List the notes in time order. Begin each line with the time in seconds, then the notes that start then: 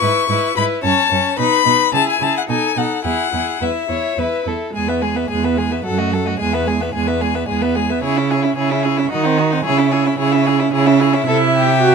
Already playing: C#6
0.01 G#2 E4 B4
0.29 G#2 E4 B4
0.56 G#2 E4 B4 B5
0.83 F#2 C#4 C#5 A5
1.11 F#2 C#4 C#5
1.38 B2 D#4 B4 B5
1.66 B2 D#4 B4
1.93 C#3 E4 G#4 A5
2.09 G#5
2.21 C#3 E4 G#4 A5
2.38 F#5
2.49 B2 D#4 A4 G#5
2.76 B2 D#4 A4 F#5
3.04 E2 E4 G#4 F#5
3.32 E2 E4 G#4
3.61 E2 E4 B4 E5
3.90 E2 E4 C#5
4.17 E2 E4 B4
4.46 E2 E4 A4
4.74 E2 G#3 G#4 G#5
4.88 B3 B4 E5
5.02 G#3 G#4 G#5
5.16 B3 B4 E5
5.29 E2 G#3 G#4 G#5
5.44 B3 B4 E5
5.57 G#3 G#4 G#5
5.70 B3 B4 E5
5.84 F#2 F#3 A4 F#5
5.98 A3 F#4 D#5
6.11 F#3 A4 F#5
6.25 A3 F#4 D#5
6.39 E2 G#3 G#4 G#5
6.53 B3 B4 E5
6.66 G#3 G#4 G#5
6.80 B3 B4 E5
6.94 E2 G#3 G#4 G#5
7.07 B3 B4 E5
7.21 G#3 G#4 G#5
7.34 B3 B4 E5
7.48 E2 G#3 G#4 G#5
7.62 B3 B4 E5
7.75 G#3 G#4 G#5
7.90 B3 B4 E5
8.03 C#3 E4 G#4 C#5
8.17 C#4 E4 E5
8.30 E4 G#4 C#5
8.43 C#4 E4 E5
8.56 C#3 E4 G#4 C#5
8.70 C#4 E4 E5
8.83 E4 G#4 C#5
8.97 C#4 E4 E5
9.11 D#3 D#4 F#4 D#5
9.23 C4 D#4 F#5
9.38 D#4 F#4 D#5
9.51 C4 D#4 F#5
9.64 C#3 E4 G#4 C#5
9.78 C#4 E4 E5
9.91 E4 G#4 C#5
10.05 C#4 E4 E5
10.18 C#3 E4 G#4 C#5
10.32 C#4 E4 E5
10.46 E4 G#4 C#5
10.60 C#4 E4 E5
10.73 C#3 E4 G#4 C#5
10.86 C#4 E4 E5
11.00 E4 G#4 C#5
11.13 C#4 E4 E5
11.27 C3 E4 A4 E5
11.56 G4
11.81 F#4